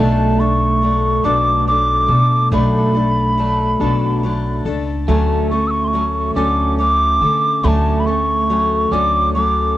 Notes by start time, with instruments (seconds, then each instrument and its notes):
Already playing: upright bass B1, steel-string acoustic guitar B2 F#3 A3, flute A5
0.00 steel-string acoustic guitar D4 A4
0.40 steel-string acoustic guitar A3 D4 A4, flute C#6
0.82 steel-string acoustic guitar F#3 A3 D4 A4
1.24 upright bass B1, steel-string acoustic guitar B2 F#3 A3 D4 A4, flute D6
1.68 steel-string acoustic guitar F#3 A3 D4 A4, flute D6
2.08 upright bass B2, steel-string acoustic guitar A3 D4 A4
2.52 upright bass B1, steel-string acoustic guitar B2 F#3 A3 D4 A4, flute B5
2.95 steel-string acoustic guitar A3 D4 A4
3.38 steel-string acoustic guitar F#3 A3 D4 A4
3.80 upright bass B1, steel-string acoustic guitar B2 F#3 A3 D4 A4
4.23 steel-string acoustic guitar F#3 A3 D4 A4
4.65 upright bass C#2, steel-string acoustic guitar A3 D4 A4
5.08 upright bass D2, steel-string acoustic guitar D3 F#3 A3 C#4 A4, flute A5
5.50 steel-string acoustic guitar A3 C#4 A4, flute C#6
5.67 flute C#6 E6
5.84 flute C6 C#6
5.93 steel-string acoustic guitar F#3 A3 C#4 A4
6.36 upright bass D2, steel-string acoustic guitar D3 F#3 A3 C#4 A4, flute D6
6.78 steel-string acoustic guitar F#3 A3 C#4 A4, flute D6
7.21 upright bass D3, steel-string acoustic guitar A3 C#4 A4
7.63 upright bass D2, steel-string acoustic guitar D3 F#3 A3 C#4 A4, flute B5
7.68 flute A5
8.00 flute B5
8.06 steel-string acoustic guitar A3 C#4 A4, flute C#6
8.50 steel-string acoustic guitar F#3 A3 C#4 A4
8.91 upright bass D2, steel-string acoustic guitar D3 F#3 A3 C#4 A4, flute D6
9.34 steel-string acoustic guitar F#3 A3 C#4 A4, flute D6